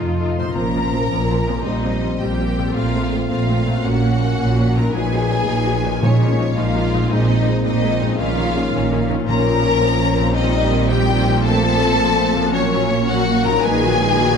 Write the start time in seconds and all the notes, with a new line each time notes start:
Already playing: F2 C3 A3 D#4 F4 A4
0.01 F2 A4 D#5
0.19 D#4 F4 A4
0.38 A#2 A3 D#4 F4 C5 C6
0.44 C#4
0.48 F4
0.53 A#1 A#2 F3 C4 C#4 C5 A#5
0.57 A#4
0.75 F3 C4
0.93 F3 C4
1.11 A#1 A#2 F3 C4
1.30 F3 C4
1.48 A#2 F3 C4
1.53 C4
1.57 G4
1.61 C5 D#5
1.66 A#1 A#2 G3 C4 D#4
1.84 G3 C4
2.02 G3 C4
2.21 A#1 A#2 G3 C4 G4 G5
2.39 G3 C4
2.58 A#2 G3 C4
2.63 C4
2.67 A4
2.72 A#2 C5 F5
2.76 A#1 A3 C4 F4
2.94 A3 C4
3.12 A3 C4
3.30 A#1 A#2 A3 C4 F4 F5
3.49 A3 C4
3.67 A#2 A3 C4
3.72 C#4
3.76 F#4
3.81 A#2 A#3 A#4
3.85 A#1 A#3 C#4 F#4 F#5
4.03 A#3 C#4
4.22 A#3 C#4
4.39 A#1 A#2 A#3 C#4
4.58 A#3 C#4
4.76 A#2 A#3 C#4 A#4 A#5
4.81 D#4
4.85 F#4
4.90 B4 G#5
4.94 A#1 A#2 F#3 D#4 G#4
5.13 F#3 D#4
5.30 F#3 D#4
5.48 A#1 A#2 F#3 D#4
5.66 F#3 D#4
5.84 A#2 F#3 D#4
5.90 D#4
5.94 F4
5.99 F3 G#3 D#4 G#4
6.03 A#1 A#2 C#4 C#5
6.21 F3 D#4
6.39 F3 D#4
6.57 A#1 A#2 F3 D#4 F4 F5
6.75 F3 D#4
6.93 A#2 F3 D#4
6.99 C4
7.03 D#4
7.07 G#3 G#4 D#5
7.11 A#1 A#2 C4 D#4
7.29 G#3 C4
7.47 G#3 C4
7.65 A#1 A#2 G#3 C4 D#4 D#5
7.83 G#3 C4
8.02 A#2 G#3 C4
8.07 C#4
8.11 D#4
8.16 A#1 A#2 D#3 C#4 G#4 F5
8.20 D#3 C#4 F4
8.38 D#3 C#4
8.56 D#3 C#4
8.74 A#1 A#2 D#3 C#4
8.92 D#3 C#4
9.10 A#2 D#3 C#4
9.15 C#4
9.19 F4
9.24 C5
9.28 A#1 A#2 F3 A#3 C#4 A#4 A#5
9.46 F3 C4
9.64 A#3 C#4
9.83 F3 C4
10.00 A#3 C#4
10.18 A#2 F3 C4
10.24 C4
10.28 G4
10.33 D#3 C4 C5 D#5
10.37 G3 C4 D#4
10.54 G3 D#4
10.72 D#3 C4
10.90 G3 C4 D#4 G4 G5
11.09 D#3 C4
11.26 A#2 G3 D#4
11.32 C4
11.36 F4
11.41 A3 C4 C5
11.45 F3 C4 A4 A5
11.62 F3 A3
11.81 A3 C4
11.99 F3 A3
12.18 A3 C4
12.36 A#2 F3 A3
12.41 C#4
12.46 F#4
12.50 A#4
12.54 F#3 A#3 C#4 C#5
12.74 F#3 C#4
12.92 A#3
13.09 F#3 A#3 C#4 F#4 F#5
13.29 A#3
13.45 A#2 F#3 C#4 A#4 A#5
13.51 D#4
13.56 F#4
13.60 A#2 B4 G#5
13.65 A#1 D#3 G#3 D#4 G#4 B4
13.83 F#3 F#4
14.01 G#3 D#4
14.20 F#3 F#4